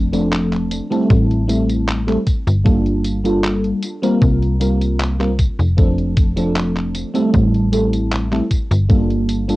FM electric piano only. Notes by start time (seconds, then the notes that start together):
0.12 F3 A3 C4 D4 A4
0.90 G3 A3 C4 E4 A4
1.48 G3 A3 C4 E4 A4
2.07 G3 A3 C4 E4 A4
2.64 G3 A#3 D4 F4 A4
3.24 G3 A#3 D4 F4 A4
4.02 G3 A#3 C4 F4 A#4
4.60 G3 A#3 C4 F4 A#4
5.19 G3 A#3 C4 F4 A#4
5.77 F3 A3 C4 D4 A4
6.36 F3 A3 C4 D4 A4
7.14 G3 A3 C4 E4 A4
7.72 G3 A3 C4 E4 A4
8.31 G3 A3 C4 E4 A4
8.89 G3 A#3 D4 F4 A4
9.48 G3 A#3 D4 F4 A4